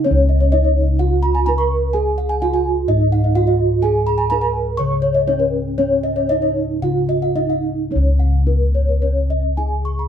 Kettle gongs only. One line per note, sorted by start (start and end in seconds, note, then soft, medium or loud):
0.00 0.49 C#3 medium
0.06 1.43 C#4 medium
0.11 2.87 C#2 loud
0.53 0.61 D#4 soft
1.47 1.55 D#4 medium
1.94 3.31 G#4 medium
2.42 2.50 D#4 soft
2.88 4.26 G#2 medium
3.36 3.44 D#4 soft
3.84 5.24 G#4 medium
4.32 4.40 D#4 soft
4.80 6.27 C#3 medium
5.28 5.36 D#4 medium
5.79 7.33 C#4 medium
6.30 6.38 D#4 soft
6.82 8.43 C#3 medium
7.35 7.43 D#4 soft
7.91 9.54 C#4 medium
7.96 10.08 C#2 loud
8.47 8.55 D#4 soft
9.58 9.66 D#4 soft